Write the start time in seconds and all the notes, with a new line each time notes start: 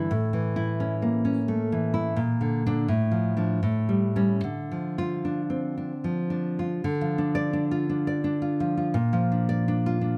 Already playing: D3 E4
0.11 A2
0.33 E3
0.56 E4
0.80 C#4
1.02 A#3
1.25 C#4
1.48 A3
1.72 E3
1.94 E4
2.16 A#2
2.41 D3
2.66 D3 D4
2.88 A2
3.11 F3
3.37 F3 D4
3.63 A2
3.89 G3
4.16 G3 C#4
4.44 D3
4.71 F3
4.98 F4
5.25 D4
5.50 C4
5.78 D4
6.04 F3
6.30 D4
6.59 F4
6.84 D3
7.01 F3
7.18 D4
7.35 D5
7.53 D4
7.71 F4
7.89 D4
8.07 D5
8.24 D4
8.42 F4
8.60 F3
8.77 F4
8.94 A#2
9.13 F3
9.32 D4
9.49 D5
9.68 D4
9.86 F4
10.01 D4